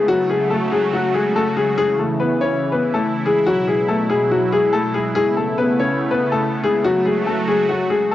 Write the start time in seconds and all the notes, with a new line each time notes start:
0.08 C#3 F#3 A3 F#4
0.30 G#3 G#4
0.50 A3 A4
0.72 G#3 G#4
0.93 F#3 F#4
1.14 G#3 G#4
1.36 A3 A4
1.57 G#3 G#4
1.78 E3 G#3 E4 G#4
1.99 A3 A4
2.20 B3 B4
2.41 C#4 C#5
2.72 B3 B4
2.94 A3 A4
3.26 G#3 G#4
3.46 B2 F#3 F#4
3.68 G#3 G#4
3.88 A3 A4
4.10 G#3 G#4
4.31 F#3 F#4
4.52 G#3 G#4
4.73 A3 A4
4.94 G#3 G#4
5.15 C#3 G#3 A3 B3 G#4
5.37 A3 A4
5.58 B3 B4
5.79 C#4 C#5
6.11 B3 B4
6.32 A3 A4
6.63 G#3 G#4
6.84 F#3 A3 F#4
7.06 G#3 G#4
7.27 A3 A4
7.48 G#3 G#4
7.69 F#3 F#4
7.90 G#3 G#4
8.12 A4